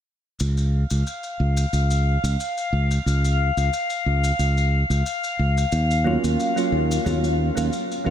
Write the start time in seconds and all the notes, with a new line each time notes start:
0.39 C#2 F5, shaker
0.57 shaker
0.90 C#2, shaker
1.07 shaker
1.23 shaker
1.40 C#2
1.57 shaker
1.73 C#2, shaker
1.91 shaker
2.24 C#2, shaker
2.40 shaker
2.58 shaker
2.73 C#2
2.91 shaker
3.06 C#2, shaker
3.25 shaker
3.57 C#2, shaker
3.73 shaker
3.90 shaker
4.06 C#2
4.24 shaker
4.39 C#2, shaker
4.58 shaker
4.90 C#2, shaker
5.06 shaker
5.24 shaker
5.39 C#2
5.58 shaker
5.72 D#2, shaker
5.91 shaker
6.04 F#3 A#3 C#4 F4, high conga
6.24 D#2, shaker
6.40 shaker
6.56 F#3 A#3 C#4 F4, shaker
6.72 D#2
6.91 shaker
7.05 D#2 F#3 A#3 C#4 F4, high conga, shaker
7.24 shaker
7.55 D#2 F#3 A#3 C#4 F4, shaker
7.73 shaker
7.92 shaker
8.04 D#2 F#3 A#3 C#4 F4